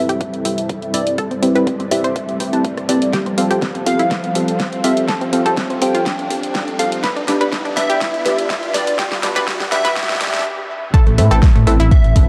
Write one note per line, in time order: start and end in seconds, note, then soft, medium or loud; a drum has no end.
0.00 10.41 G3 medium
0.00 6.99 C4 medium
0.00 3.09 E4 medium
0.00 3.09 A4 medium
0.00 0.95 E5 loud
0.00 1.14 E5 medium
0.00 riser medium
0.09 1.09 G4 medium
0.09 closed hi-hat soft
0.21 kick loud
0.21 closed hi-hat soft
0.34 closed hi-hat soft
0.45 0.91 C4 medium
0.45 0.91 E4 medium
0.45 0.91 G4 medium
0.45 0.91 B4 medium
0.45 0.91 E5 medium
0.45 open hi-hat loud
0.58 closed hi-hat soft
0.69 kick loud
0.69 closed hi-hat soft
0.82 closed hi-hat soft
0.94 1.07 C4 medium
0.94 1.07 E4 medium
0.94 1.07 G4 medium
0.94 1.07 B4 medium
0.94 1.18 D5 medium
0.94 1.07 E5 loud
0.94 open hi-hat loud
1.07 closed hi-hat medium
1.18 1.27 A4 loud
1.18 3.11 D5 medium
1.18 kick loud
1.18 closed hi-hat soft
1.31 1.39 C4 medium
1.31 closed hi-hat soft
1.42 1.51 C4 medium
1.42 1.51 E4 medium
1.42 1.51 G4 medium
1.42 1.51 B4 medium
1.42 1.51 E5 medium
1.42 open hi-hat loud
1.55 1.63 C4 medium
1.55 1.63 E4 medium
1.55 1.63 G4 medium
1.55 1.63 B4 medium
1.55 1.63 B4 loud
1.55 1.63 G5 medium
1.55 closed hi-hat soft
1.67 1.76 C4 medium
1.67 kick loud
1.67 closed hi-hat soft
1.80 1.88 C4 medium
1.80 closed hi-hat soft
1.91 2.00 C4 medium
1.91 2.00 E4 medium
1.91 2.00 G4 medium
1.91 2.00 B4 medium
1.91 2.00 E5 loud
1.91 2.90 E5 loud
1.91 cross-stick medium
1.91 open hi-hat loud
2.04 3.04 C5 medium
2.04 closed hi-hat soft
2.16 kick loud
2.16 closed hi-hat soft
2.29 closed hi-hat soft
2.40 2.51 C4 medium
2.40 2.51 E4 medium
2.40 2.51 G4 medium
2.40 2.51 B4 medium
2.40 2.51 G5 medium
2.40 kick medium
2.40 open hi-hat loud
2.53 2.60 C4 medium
2.53 2.60 E4 medium
2.53 2.60 G4 medium
2.53 2.60 B4 medium
2.53 2.60 A5 medium
2.53 closed hi-hat soft
2.65 kick loud
2.65 closed hi-hat soft
2.77 cross-stick medium
2.77 closed hi-hat soft
2.89 2.97 C4 medium
2.89 2.97 E4 medium
2.89 2.97 G4 medium
2.89 2.97 B4 medium
2.89 3.13 D5 loud
2.89 2.97 A5 medium
2.89 open hi-hat loud
3.02 closed hi-hat medium
3.13 7.00 F3 medium
3.13 3.22 G4 loud
3.13 7.00 A4 medium
3.13 7.00 C5 medium
3.13 kick loud
3.13 snare soft
3.13 closed hi-hat soft
3.26 3.34 C4 medium
3.26 closed hi-hat soft
3.38 3.46 C4 medium
3.38 3.46 F4 medium
3.38 3.46 G4 medium
3.38 3.46 A4 medium
3.38 3.46 F5 loud
3.38 open hi-hat loud
3.51 3.58 C4 medium
3.51 3.58 F4 medium
3.51 3.58 G4 medium
3.51 3.58 G4 loud
3.51 3.58 A4 medium
3.51 3.58 G5 medium
3.51 closed hi-hat medium
3.62 3.71 C4 medium
3.62 kick loud
3.62 snare soft
3.62 closed hi-hat soft
3.75 3.83 C4 medium
3.75 closed hi-hat soft
3.86 3.95 C4 medium
3.86 3.95 F4 medium
3.86 3.95 G4 medium
3.86 3.95 A4 medium
3.86 3.95 F5 loud
3.86 4.86 F5 loud
3.86 open hi-hat loud
3.99 4.99 E4 loud
3.99 closed hi-hat soft
4.11 kick loud
4.11 snare soft
4.11 closed hi-hat medium
4.24 closed hi-hat soft
4.35 4.81 C4 medium
4.35 4.81 F4 medium
4.35 4.81 G4 medium
4.35 4.81 A4 medium
4.35 4.81 F5 medium
4.35 open hi-hat loud
4.48 closed hi-hat soft
4.60 kick loud
4.60 snare medium
4.60 closed hi-hat soft
4.73 closed hi-hat soft
4.84 4.97 C4 medium
4.84 4.97 F4 medium
4.84 4.97 G4 medium
4.84 4.97 A4 medium
4.84 5.08 E5 loud
4.84 4.97 F5 loud
4.84 open hi-hat loud
4.97 closed hi-hat medium
5.08 5.17 A4 loud
5.08 kick loud
5.08 snare medium
5.08 closed hi-hat medium
5.21 5.29 C4 medium
5.21 closed hi-hat soft
5.33 5.41 C4 medium
5.33 5.41 F4 medium
5.33 5.41 G4 medium
5.33 5.41 A4 medium
5.33 5.41 F5 loud
5.33 open hi-hat loud
5.46 5.53 C4 medium
5.46 5.53 F4 medium
5.46 5.53 G4 medium
5.46 5.53 A4 medium
5.46 5.53 A4 loud
5.46 5.53 G5 medium
5.46 closed hi-hat medium
5.57 5.66 C4 medium
5.57 kick loud
5.57 snare medium
5.57 closed hi-hat soft
5.70 5.78 C4 medium
5.70 closed hi-hat soft
5.82 5.90 C4 medium
5.82 5.90 F4 medium
5.82 5.90 G4 medium
5.82 5.90 A4 medium
5.82 5.90 F5 loud
5.82 6.81 G5 loud
5.82 open hi-hat loud
5.95 6.94 F4 loud
5.95 closed hi-hat medium
6.06 kick loud
6.06 snare medium
6.06 closed hi-hat medium
6.19 closed hi-hat soft
6.30 6.76 C4 medium
6.30 6.76 F4 medium
6.30 6.76 G4 medium
6.30 6.76 A4 medium
6.30 6.76 F5 medium
6.30 kick medium
6.30 open hi-hat loud
6.43 closed hi-hat medium
6.55 kick loud
6.55 snare medium
6.55 closed hi-hat medium
6.68 closed hi-hat soft
6.79 6.92 C4 medium
6.79 6.92 F4 medium
6.79 6.92 G4 medium
6.79 6.92 A4 medium
6.79 7.04 F5 loud
6.79 6.92 F5 loud
6.79 open hi-hat loud
6.92 closed hi-hat medium
7.03 10.42 B3 medium
7.03 10.42 D4 medium
7.03 10.42 B4 medium
7.03 7.12 B4 loud
7.03 10.42 D5 medium
7.03 kick loud
7.03 snare medium
7.03 closed hi-hat medium
7.16 7.24 D4 medium
7.16 closed hi-hat soft
7.28 7.36 D4 medium
7.28 7.37 D4 medium
7.28 7.36 G4 medium
7.28 7.36 B4 loud
7.28 snare medium
7.28 open hi-hat loud
7.41 7.48 D4 medium
7.41 7.48 G4 medium
7.41 7.49 B4 medium
7.41 7.48 D5 medium
7.41 closed hi-hat medium
7.52 7.61 D4 medium
7.52 kick loud
7.52 snare medium
7.52 closed hi-hat medium
7.65 7.73 D4 medium
7.65 closed hi-hat soft
7.77 7.85 D4 medium
7.77 7.85 G4 medium
7.77 7.85 B4 loud
7.77 8.76 E5 loud
7.77 snare medium
7.77 open hi-hat loud
7.90 8.89 G4 loud
7.90 closed hi-hat medium
8.01 kick loud
8.01 snare medium
8.01 closed hi-hat medium
8.14 closed hi-hat soft
8.25 8.72 D4 medium
8.25 8.72 G4 medium
8.25 8.72 B4 medium
8.25 snare medium
8.25 open hi-hat loud
8.38 closed hi-hat medium
8.50 kick loud
8.50 snare medium
8.50 closed hi-hat medium
8.63 closed hi-hat soft
8.74 8.87 D4 loud
8.74 8.87 G4 medium
8.74 8.87 B4 loud
8.74 8.99 D5 loud
8.74 snare medium
8.74 open hi-hat loud
8.87 closed hi-hat medium
8.99 9.07 G4 loud
8.99 kick loud
8.99 snare medium
8.99 closed hi-hat medium
9.12 9.19 G3 medium
9.12 snare medium
9.12 closed hi-hat soft
9.23 9.32 G3 medium
9.23 9.31 D4 medium
9.23 9.31 G4 medium
9.23 9.31 B4 loud
9.23 snare medium
9.23 open hi-hat loud
9.36 9.43 D4 medium
9.36 9.43 G4 medium
9.36 9.44 B4 medium
9.36 9.43 D5 medium
9.36 snare medium
9.36 closed hi-hat medium
9.47 9.56 G3 medium
9.47 kick loud
9.47 snare loud
9.47 closed hi-hat medium
9.60 9.68 G3 medium
9.60 snare medium
9.60 closed hi-hat soft
9.72 9.80 G3 medium
9.72 9.80 D4 medium
9.72 9.80 G4 medium
9.72 9.80 B4 loud
9.72 10.41 E5 loud
9.72 snare loud
9.72 open hi-hat loud
9.85 10.45 B4 loud
9.85 snare medium
9.85 closed hi-hat medium
9.96 kick loud
9.96 snare loud
9.96 closed hi-hat medium
10.03 snare medium
10.09 snare loud
10.09 closed hi-hat soft
10.15 snare medium
10.21 10.32 D4 medium
10.21 10.32 G4 medium
10.21 10.32 D5 medium
10.21 kick medium
10.21 snare loud
10.21 open hi-hat loud
10.27 snare medium
10.33 10.41 D4 medium
10.33 10.41 G4 medium
10.33 10.41 E5 loud
10.33 snare medium
10.33 closed hi-hat medium
10.39 snare medium
10.94 12.29 A3 medium
10.94 12.29 C4 medium
10.94 12.29 E4 medium
10.94 11.02 A4 loud
10.94 12.29 A4 medium
10.94 kick loud
10.94 closed hi-hat medium
11.07 11.20 A1 medium
11.07 11.14 A3 medium
11.07 closed hi-hat soft
11.18 11.29 A2 loud
11.18 11.27 A3 medium
11.18 11.26 C4 medium
11.18 11.26 E4 medium
11.18 11.26 A4 medium
11.18 11.26 B4 medium
11.18 11.26 E5 loud
11.18 open hi-hat loud
11.31 11.41 A1 medium
11.31 11.38 C4 medium
11.31 11.38 E4 medium
11.31 11.38 A4 medium
11.31 11.39 A4 loud
11.31 11.38 B4 medium
11.31 11.38 G5 medium
11.31 cross-stick medium
11.31 closed hi-hat medium
11.43 11.51 A3 medium
11.43 kick loud
11.43 snare loud
11.43 closed hi-hat medium
11.55 11.65 A2 medium
11.55 11.63 A3 medium
11.55 closed hi-hat soft
11.67 11.78 A1 loud
11.67 11.76 A3 medium
11.67 11.75 C4 medium
11.67 11.75 E4 medium
11.67 11.75 A4 medium
11.67 11.75 B4 medium
11.67 11.75 E5 loud
11.67 cross-stick medium
11.67 open hi-hat loud
11.80 11.90 A1 medium
11.80 12.29 E4 loud
11.80 closed hi-hat medium
11.91 12.29 E5 loud
11.91 kick loud
11.91 closed hi-hat medium
12.04 12.14 A1 medium
12.04 closed hi-hat soft
12.16 12.27 G1 loud
12.16 12.29 C4 medium
12.16 12.29 E4 medium
12.16 12.29 A4 medium
12.16 12.29 B4 medium
12.16 12.29 E5 medium
12.16 kick medium
12.16 open hi-hat loud